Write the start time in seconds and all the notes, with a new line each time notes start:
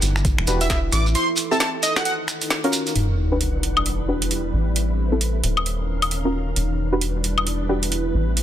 Already playing: E4
0.02 G1, open hi-hat, shekere
0.07 B4
0.16 finger snap, shekere
0.25 kick, closed hi-hat, shekere
0.38 E1, finger snap
0.47 E1 D4 F#4 G4 B4, open hi-hat, shekere
0.61 E5, closed hi-hat, shekere
0.70 E5, kick, snare, closed hi-hat, shekere
0.92 A1 A4 D6, finger snap, open hi-hat, shekere
1.06 shekere
1.15 C6, closed hi-hat, shekere
1.34 C6, open hi-hat, shekere
1.51 C4 E4 G4 A4 A5, shekere
1.60 A5, snare, closed hi-hat, shekere
1.83 D#4 D#5, open hi-hat, shekere
1.96 F#5, finger snap, snare, shekere
2.05 F#5, closed hi-hat, shekere
2.28 finger snap, open hi-hat, shekere
2.41 closed hi-hat, shekere
2.50 snare, closed hi-hat, shekere
2.64 C#4 F4 F#4 A#4, closed hi-hat
2.73 open hi-hat, shekere
2.87 closed hi-hat, shekere
2.96 E1 G3 D4 E4 B4 F#5, closed hi-hat, sub drop
3.32 D4 F#4 G4 B4
3.41 closed hi-hat
3.63 closed hi-hat
3.67 B4
3.77 high woodblock
3.86 closed hi-hat
4.08 D4 F#4 G4 B4
4.22 closed hi-hat
4.31 closed hi-hat
4.53 A1 C4 E4 A4
4.76 closed hi-hat
5.12 C4 E4 G4 A4
5.21 closed hi-hat
5.44 D#1 C#4 D#4 A#4 F5, closed hi-hat
5.57 high woodblock
5.66 closed hi-hat
6.02 closed hi-hat, high woodblock
6.11 closed hi-hat
6.25 C#4 F4 F#4 A#4
6.56 E1 G3 D4 E4 B4, closed hi-hat
6.92 D4 F#4 G4 B4
7.01 closed hi-hat
7.23 B4, closed hi-hat
7.38 high woodblock
7.47 closed hi-hat
7.69 D4 F#4 G4 B4
7.83 closed hi-hat
7.92 closed hi-hat
8.14 A1 C4 E4 G4 A4
8.37 closed hi-hat